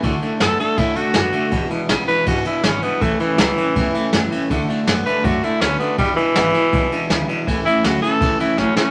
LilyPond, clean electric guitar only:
\new Staff \with { instrumentName = "Clean electric guitar" } { \clef bass \time 4/4 \key a \major \tempo 4 = 162 <d a>8 <d a>8 <d b>8 <d a>8 <d a>8 <d a>8 <d b>8 <d a>8 | <e, b,>8 <e, b,>8 <e, cis>8 <e, b,>8 <e, b,>8 <e, b,>8 <e, cis>8 <e, b,>8 | <a, e>8 <a, e>8 <a, fis>8 <a, e>8 <a, e>8 <a, e>8 <a, fis>8 <a, e>8 | <d a>8 <d a>8 <d b>8 <d a>8 <d a>8 <d a>8 <d b>8 <d a>8 |
<e, b,>8 <e, b,>8 <e, cis>8 <e, b,>8 <e, b,>8 <e, b,>8 <e, cis>8 <e, b,>8 | <a, e>8 <a, e>8 <a, fis>8 <a, e>8 <a, e>8 <a, e>8 <a, fis>8 <a, e>8 | }